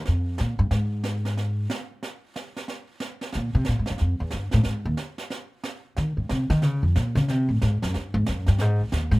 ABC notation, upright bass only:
X:1
M:4/4
L:1/8
Q:"Swing" 1/4=183
K:Ab
V:1 name="Upright bass" clef=bass
F,,2 B,, G,, A,,4- | A,,2 z6 | z4 B,, C, (3B,, A,, G,, | F,, =E,, G,, =A,, _A,, _E,, z2 |
z4 E, G,, C, E, | D, F,, B,, D, C, =A,, _A,, _G,, | G,, A,, _G,, =G,, A,, C,, E,, A,, |]